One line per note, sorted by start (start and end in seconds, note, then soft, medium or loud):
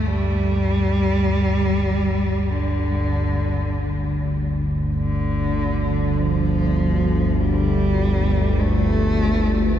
0.00 9.79 G1 medium
0.00 9.79 D2 medium
0.00 9.79 A4 medium
0.07 2.51 G3 loud
2.50 4.34 D3 medium
4.96 6.19 D3 medium
6.18 7.40 F3 medium
7.39 8.62 G3 medium
8.61 9.79 A3 medium